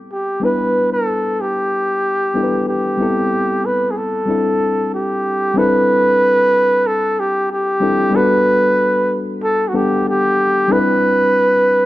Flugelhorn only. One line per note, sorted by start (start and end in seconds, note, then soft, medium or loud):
0.12 0.46 G4 medium
0.44 0.91 B4 medium
0.93 1.43 A4 medium
1.41 2.68 G4 medium
2.69 3.67 G4 medium
3.66 3.92 B4 medium
3.91 3.99 G#4 medium
3.97 4.93 A4 medium
4.94 5.60 G4 medium
5.58 6.88 B4 loud
6.87 7.21 A4 medium
7.20 7.51 G4 medium
7.52 8.18 G4 medium
8.16 9.16 B4 loud
9.43 9.70 A4 medium
9.69 9.77 F#4 medium
9.76 10.07 G4 medium
10.08 10.74 G4 medium
10.72 11.86 B4 loud